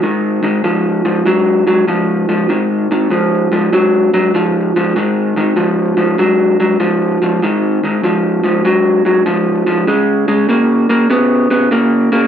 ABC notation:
X:1
M:4/4
L:1/8
Q:"Swing" 1/4=98
K:Db
V:1 name="Clean electric guitar" clef=bass
[A,,E,] [A,,E,] [A,,F,] [A,,F,] [A,,G,] [A,,G,] [A,,F,] [A,,F,] | [A,,E,] [A,,E,] [A,,F,] [A,,F,] [A,,G,] [A,,G,] [A,,F,] [A,,F,] | [A,,E,] [A,,E,] [A,,F,] [A,,F,] [A,,G,] [A,,G,] [A,,F,] [A,,F,] | [A,,E,] [A,,E,] [A,,F,] [A,,F,] [A,,G,] [A,,G,] [A,,F,] [A,,F,] |
[D,A,] [D,A,] [D,B,] [D,B,] [D,_C] [D,C] [D,B,] [D,B,] |]